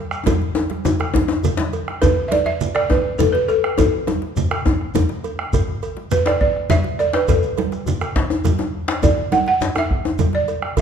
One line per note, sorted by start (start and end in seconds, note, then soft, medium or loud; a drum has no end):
0.11 bombo rim medium
0.11 shekere soft
0.26 bombo low medium
0.26 cowbell medium
0.26 djembe tone loud
0.26 high conga medium
0.26 djembe bass medium
0.26 low conga medium
0.26 shekere medium
0.41 djembe tone medium
0.41 high conga soft
0.55 bombo rim soft
0.55 cowbell soft
0.55 djembe tone loud
0.55 high conga soft
0.70 bombo rim soft
0.70 djembe slap medium
0.70 high conga medium
0.85 bombo rim soft
0.85 djembe tone loud
0.85 low conga medium
0.85 djembe bass medium
0.85 shekere medium
0.99 bombo rim medium
0.99 cowbell medium
0.99 djembe tone medium
0.99 high conga soft
1.14 bombo rim soft
1.14 bombo low medium
1.14 djembe tone loud
1.14 high conga medium
1.28 bombo rim soft
1.28 djembe tone loud
1.43 cowbell medium
1.43 djembe bass medium
1.43 low conga medium
1.43 shekere medium
1.57 djembe slap loud
1.57 djembe slap medium
1.57 djembe tone medium
1.57 high conga medium
1.73 cowbell medium
1.73 djembe slap soft
1.73 shekere soft
1.88 bombo rim medium
1.88 djembe slap soft
1.88 high conga soft
2.02 2.26 B4 medium
2.02 bombo low loud
2.02 cowbell medium
2.02 djembe tone loud
2.02 djembe bass medium
2.02 low conga medium
2.02 shekere medium
2.17 djembe tone medium
2.28 2.47 D5 medium
2.28 2.32 E5 medium
2.28 cowbell soft
2.28 high conga medium
2.28 djembe tone medium
2.28 shekere soft
2.46 2.76 E5 loud
2.46 djembe slap medium
2.46 high conga soft
2.61 low conga medium
2.61 shekere medium
2.75 2.90 D5 medium
2.75 bombo rim medium
2.75 cowbell medium
2.75 djembe tone medium
2.90 3.20 B4 medium
2.90 bombo rim soft
2.90 bombo low loud
2.90 djembe tone loud
3.05 bombo rim soft
3.19 3.34 A4 medium
3.19 cowbell soft
3.19 djembe slap soft
3.19 djembe tone medium
3.19 high conga medium
3.19 djembe bass medium
3.19 low conga medium
3.19 shekere medium
3.32 3.48 B4 medium
3.32 djembe slap medium
3.32 djembe tone medium
3.48 3.76 A4 medium
3.48 cowbell soft
3.48 high conga soft
3.48 shekere soft
3.64 bombo rim medium
3.64 djembe slap soft
3.78 4.62 A4 medium
3.78 bombo low loud
3.78 cowbell medium
3.78 djembe tone medium
3.78 djembe bass medium
3.78 low conga medium
3.78 shekere medium
3.94 djembe tone medium
4.07 cowbell soft
4.07 djembe tone medium
4.07 high conga medium
4.07 shekere soft
4.22 djembe slap medium
4.22 high conga soft
4.36 djembe bass medium
4.36 low conga medium
4.36 shekere medium
4.51 bombo rim medium
4.51 cowbell medium
4.51 djembe tone medium
4.66 bombo rim soft
4.66 bombo low loud
4.66 djembe tone loud
4.81 bombo rim soft
4.95 cowbell soft
4.95 djembe slap soft
4.95 djembe tone medium
4.95 high conga medium
4.95 djembe bass medium
4.95 low conga medium
4.95 shekere medium
5.09 djembe slap medium
5.09 djembe tone medium
5.24 cowbell soft
5.24 high conga soft
5.24 shekere soft
5.38 bombo rim medium
5.38 djembe slap soft
5.53 bombo low loud
5.53 cowbell medium
5.53 djembe bass medium
5.53 low conga medium
5.53 shekere medium
5.68 djembe tone medium
5.83 cowbell soft
5.83 shekere soft
5.97 djembe slap medium
5.97 high conga soft
6.11 6.27 B4 medium
6.11 low conga medium
6.11 djembe bass medium
6.11 shekere medium
6.26 6.40 D5 medium
6.26 bombo rim medium
6.26 cowbell medium
6.26 djembe slap medium
6.26 djembe tone medium
6.41 6.71 D5 medium
6.41 bombo rim soft
6.41 bombo low medium
6.56 bombo rim soft
6.70 7.00 E5 loud
6.70 djembe slap medium
6.70 djembe slap soft
6.70 high conga medium
6.70 low conga medium
6.70 djembe bass medium
6.70 shekere medium
6.84 djembe slap medium
6.84 djembe tone medium
6.99 7.14 D5 medium
6.99 cowbell medium
6.99 high conga soft
6.99 shekere soft
7.13 7.29 B4 medium
7.13 bombo rim medium
7.13 djembe slap medium
7.13 djembe slap soft
7.28 7.83 A4 medium
7.28 bombo low medium
7.28 cowbell medium
7.28 high conga soft
7.28 djembe bass medium
7.28 low conga medium
7.28 shekere medium
7.43 djembe tone medium
7.43 high conga soft
7.43 shekere soft
7.57 cowbell medium
7.57 djembe slap soft
7.57 high conga medium
7.57 shekere soft
7.72 bombo rim soft
7.72 djembe slap medium
7.72 shekere soft
7.86 djembe bass medium
7.86 low conga medium
7.86 shekere medium
8.01 bombo rim medium
8.01 cowbell soft
8.01 djembe tone medium
8.01 high conga soft
8.01 shekere soft
8.16 bombo low loud
8.16 djembe slap medium
8.30 bombo rim soft
8.30 djembe slap soft
8.30 djembe tone medium
8.44 bombo rim soft
8.44 cowbell soft
8.44 djembe slap soft
8.44 high conga medium
8.44 djembe bass medium
8.44 low conga medium
8.44 shekere medium
8.59 bombo rim soft
8.59 djembe slap medium
8.59 djembe tone medium
8.88 bombo rim medium
8.88 djembe slap loud
9.02 9.33 D5 medium
9.02 bombo low loud
9.02 cowbell medium
9.02 djembe tone medium
9.02 djembe bass medium
9.02 low conga medium
9.02 shekere medium
9.17 djembe tone medium
9.32 9.46 F#5 medium
9.32 cowbell soft
9.32 high conga medium
9.32 djembe tone medium
9.32 shekere soft
9.46 9.74 F#5 loud
9.46 djembe slap medium
9.46 high conga soft
9.61 djembe slap medium
9.61 djembe bass medium
9.61 shekere medium
9.75 10.37 E5 loud
9.75 bombo rim medium
9.75 cowbell soft
9.75 djembe tone medium
9.91 bombo rim soft
9.91 bombo low medium
10.05 bombo rim soft
10.05 djembe tone medium
10.19 cowbell soft
10.19 djembe slap soft
10.19 high conga medium
10.19 low conga medium
10.19 djembe bass medium
10.19 shekere medium
10.33 10.79 D5 medium
10.33 djembe slap medium
10.33 djembe tone medium
10.48 cowbell medium
10.48 high conga soft
10.48 shekere soft
10.62 bombo rim medium
10.62 djembe slap soft
10.77 bombo low medium
10.77 cowbell medium
10.77 djembe bass medium
10.77 low conga medium
10.77 shekere medium